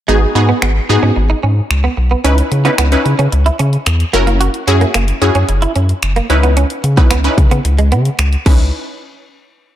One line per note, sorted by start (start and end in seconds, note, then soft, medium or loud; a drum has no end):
0.08 0.26 G#1 loud
0.08 0.17 G#3 medium
0.08 0.30 B3 medium
0.08 0.30 D#4 medium
0.08 0.30 F#4 medium
0.08 0.30 G#4 loud
0.35 0.53 G#2 loud
0.35 0.79 B3 medium
0.35 0.79 D#4 medium
0.35 0.79 F#4 medium
0.35 0.79 G#4 medium
0.35 muted clean electric guitar stroke soft
0.49 0.58 B3 medium
0.62 0.80 G#1 medium
0.62 0.71 B3 medium
0.62 finger snap loud
0.89 0.98 G#2 loud
0.89 1.77 B3 medium
0.89 1.77 D#4 medium
0.89 1.77 F#4 medium
0.89 1.77 G#4 loud
0.89 muted clean electric guitar stroke soft
1.03 1.12 G#2 medium
1.03 1.12 C#4 medium
1.16 1.34 G#1 loud
1.16 muted clean electric guitar stroke soft
1.30 1.39 D#4 medium
1.43 1.61 G#2 loud
1.43 1.52 C#4 medium
1.71 1.88 C#2 medium
1.71 finger snap loud
1.84 1.93 B3 medium
1.97 2.15 B1 medium
1.97 muted clean electric guitar stroke soft
2.11 2.20 B3 medium
2.24 2.42 C#2 loud
2.24 2.57 C#4 medium
2.24 2.34 C#4 medium
2.24 2.57 D#4 medium
2.24 2.58 E4 medium
2.24 2.58 B4 loud
2.24 closed hi-hat loud
2.38 closed hi-hat medium
2.52 2.69 C#3 medium
2.52 muted clean electric guitar stroke soft
2.52 closed hi-hat medium
2.65 2.74 B3 medium
2.65 2.87 C#4 medium
2.65 2.87 D#4 medium
2.65 2.87 E4 medium
2.65 2.87 B4 medium
2.65 closed hi-hat soft
2.78 2.96 C#2 loud
2.78 2.88 B3 medium
2.78 finger snap loud
2.78 closed hi-hat medium
2.92 3.80 C#4 medium
2.92 3.80 D#4 medium
2.92 3.80 E4 medium
2.92 3.80 B4 medium
2.92 closed hi-hat medium
3.05 3.14 C#3 loud
3.05 muted clean electric guitar stroke soft
3.05 closed hi-hat medium
3.19 3.28 C#3 loud
3.19 3.28 C#4 medium
3.19 closed hi-hat medium
3.32 3.50 C#2 loud
3.32 muted clean electric guitar stroke soft
3.32 closed hi-hat medium
3.46 3.55 E4 medium
3.46 closed hi-hat medium
3.59 3.77 C#3 medium
3.59 3.69 C#4 medium
3.59 closed hi-hat medium
3.73 closed hi-hat soft
3.86 4.04 E2 loud
3.86 finger snap loud
3.86 muted clean electric guitar stroke soft
3.86 closed hi-hat medium
4.00 closed hi-hat soft
4.13 4.49 F#1 medium
4.13 4.23 A#3 medium
4.13 4.58 C#4 medium
4.13 4.58 E4 medium
4.13 4.58 F#4 medium
4.13 4.58 A#4 loud
4.13 closed hi-hat medium
4.27 4.36 A#3 medium
4.27 closed hi-hat soft
4.41 4.50 F#4 medium
4.41 closed hi-hat medium
4.54 closed hi-hat medium
4.67 4.85 F#2 loud
4.67 5.12 C#4 medium
4.67 5.12 E4 medium
4.67 5.12 F#4 medium
4.67 5.12 G#4 loud
4.67 muted clean electric guitar stroke soft
4.67 closed hi-hat medium
4.81 4.90 A#3 medium
4.81 closed hi-hat soft
4.94 5.12 F#1 loud
4.94 5.04 A#3 medium
4.94 finger snap loud
4.94 closed hi-hat medium
5.08 closed hi-hat medium
5.21 5.31 F#2 medium
5.21 6.10 C#4 medium
5.21 6.10 E4 medium
5.21 6.10 F#4 medium
5.21 6.10 G#4 loud
5.21 muted clean electric guitar stroke soft
5.21 closed hi-hat medium
5.35 5.44 F#2 loud
5.35 5.44 C#4 medium
5.35 closed hi-hat medium
5.49 5.66 F#1 loud
5.49 muted clean electric guitar stroke soft
5.49 closed hi-hat medium
5.62 5.71 E4 medium
5.62 closed hi-hat medium
5.76 5.93 F#2 loud
5.76 5.85 C#4 medium
5.76 closed hi-hat medium
5.89 closed hi-hat soft
6.02 6.20 F#1 medium
6.02 finger snap loud
6.02 closed hi-hat medium
6.16 6.25 A#3 medium
6.16 closed hi-hat soft
6.30 6.65 C#2 loud
6.30 6.85 C#4 medium
6.30 6.85 D#4 medium
6.30 6.85 E4 medium
6.30 6.85 B4 loud
6.30 muted clean electric guitar stroke soft
6.30 closed hi-hat medium
6.43 6.52 B3 medium
6.43 closed hi-hat soft
6.57 6.66 C#4 medium
6.57 closed hi-hat medium
6.70 closed hi-hat medium
6.84 7.01 C#3 loud
6.84 muted clean electric guitar stroke soft
6.84 closed hi-hat medium
6.97 7.07 B3 medium
6.97 7.19 C#4 medium
6.97 7.19 D#4 medium
6.97 7.19 E4 medium
6.97 7.20 B4 medium
6.97 kick medium
6.97 closed hi-hat soft
7.11 7.29 C#2 medium
7.11 7.20 B3 medium
7.11 finger snap loud
7.11 closed hi-hat medium
7.24 8.12 C#4 medium
7.24 8.12 D#4 medium
7.24 8.12 E4 medium
7.24 8.13 B4 medium
7.24 closed hi-hat medium
7.38 7.47 C#3 loud
7.38 muted clean electric guitar stroke soft
7.38 kick medium
7.38 closed hi-hat medium
7.51 7.60 C#3 loud
7.51 7.61 B3 medium
7.51 closed hi-hat medium
7.65 7.94 C#2 loud
7.65 muted clean electric guitar stroke soft
7.65 closed hi-hat medium
7.79 7.88 G#3 medium
7.79 closed hi-hat medium
7.92 8.10 C#3 loud
7.92 8.01 B3 medium
7.92 closed hi-hat medium
8.05 closed hi-hat soft
8.19 8.36 C#2 medium
8.19 finger snap loud
8.19 muted clean electric guitar stroke soft
8.19 closed hi-hat medium
8.33 closed hi-hat soft
8.46 8.71 C#2 loud
8.46 8.71 C#4 medium
8.46 8.62 C#4 medium
8.46 8.71 D#4 medium
8.46 8.71 E4 medium
8.46 8.71 B4 medium
8.46 kick loud
8.46 crash medium